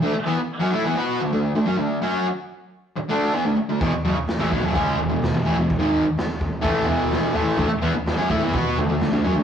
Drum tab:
SD |--------|--------|--o---o-|--o---o-|
FT |--------|--------|oooooooo|oooooooo|
BD |--------|--------|o--oo---|o--oo---|

SD |--o---o-|
FT |oooooooo|
BD |o--oo---|